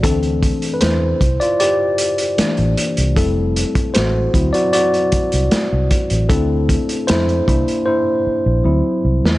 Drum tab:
HH |xxxxx-xxx-xxxxxx|x-xxx-xxxxxxx-xx|x-xxxxxx--------|
SD |----o-------o---|----o-------o---|----o----------o|
BD |o-o---o---------|o--o--o---o---o-|o-o---o---------|